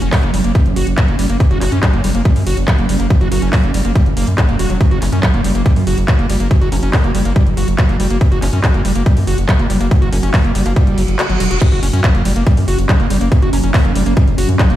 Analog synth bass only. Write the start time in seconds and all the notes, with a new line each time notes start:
0.02 F#1
0.23 F#1
0.34 F#1
0.44 F#1
0.66 F#1
0.76 F#1
0.87 F#1
1.08 F#1
1.19 F#1
1.30 F#1
1.51 F#1
1.61 F#1
1.72 F#2
1.93 F#1
2.04 F#1
2.15 F#1
2.36 F#2
2.47 F#1
2.57 F#1
2.78 F#1
2.89 F#1
3.00 F#1
3.21 F#1
3.32 F#1
3.42 F#1
3.64 F#1
3.74 F#1
3.85 F#1
4.06 F#1
4.17 F#1
4.27 F#2
4.49 E1
4.59 E1
4.70 E1
4.91 F#1
5.02 F#1
5.13 F#2
5.34 F#1
5.44 F#1
5.55 F#1
5.76 F#2
5.87 F#1
5.98 F#1
6.19 F#1
6.30 F#1
6.40 F#1
6.61 F#1
6.72 F#1
6.83 F#1
7.04 F#1
7.15 F#1
7.25 F#1
7.47 F#1
7.57 F#1
7.68 F#1
7.89 F#1
8.00 F#1
8.10 F#1
8.32 F#1
8.42 F#1
8.53 F#2
8.74 F#1
8.85 F#1
8.96 F#1
9.17 F#2
9.27 F#1
9.38 F#1
9.59 F#1
9.70 F#1
9.81 F#1
10.02 F#1
10.13 F#1
10.23 F#1
10.44 F#1
10.55 F#1
10.66 F#1
10.87 F#1
10.98 F#1
11.08 F#1
11.30 G1
11.40 E1
11.51 E1
11.72 F#1
11.83 F#1
11.93 F#2
12.15 F#1
12.25 F#1
12.36 F#1
12.57 F#2
12.68 F#1
12.78 F#1
13.00 F#1
13.10 F#1
13.21 F#1
13.42 F#1
13.53 F#1
13.64 F#1
13.85 F#1
13.95 F#1
14.06 F#1
14.27 F#1
14.38 F#1
14.49 F#2
14.70 E1